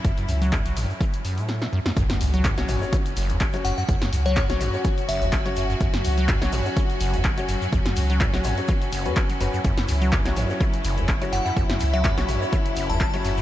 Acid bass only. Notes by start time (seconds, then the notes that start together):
0.05 F#2
0.18 F#2
0.29 F#2
0.42 F#3
0.53 F#2
0.66 F#3
0.77 F#2
0.90 G2
1.01 E3
1.25 F#2
1.38 A2
1.62 B2
1.73 F#2
1.86 F#2
1.97 F#2
2.10 F#2
2.21 F#2
2.34 F#3
2.45 F#2
2.58 F#3
2.69 F#2
2.82 G2
2.93 E3
3.17 F#1
3.30 F#2
3.54 F#3
3.65 F#2
3.78 F#2
3.89 F#2
4.02 F#2
4.13 F#2
4.26 F#3
4.37 F#2
4.50 F#3
4.61 F#2
4.74 G2
4.85 E3
5.09 F#1
5.22 F#2
5.46 F#3
5.57 F#2
5.70 F#2
5.81 F#2
5.94 F#2
6.05 F#2
6.18 F#3
6.29 F#2
6.42 F#3
6.53 F#2
6.66 G2
6.77 E3
7.01 F#1
7.14 F#2
7.38 F#3
7.49 F#2
7.62 F#2
7.73 F#2
7.86 F#2
7.97 F#2
8.10 F#3
8.21 F#2
8.34 F#3
8.45 F#2
8.58 G2
8.69 E3
8.93 F#1
9.06 F#2
9.30 F#3
9.41 F#2
9.54 F#2
9.65 F#2
9.78 F#2
9.89 F#2
10.02 F#3
10.13 F#2
10.26 F#3
10.37 F#2
10.50 G2
10.61 E3
10.85 F#1
10.98 F#2
11.22 F#3
11.33 F#2
11.46 F#2
11.57 F#2
11.70 F#2
11.81 F#2
11.94 F#3
12.05 F#2
12.18 F#3
12.29 F#2
12.42 G2
12.53 E3
12.77 F#1
12.90 F#2
13.14 F#3
13.25 F#2
13.38 F#2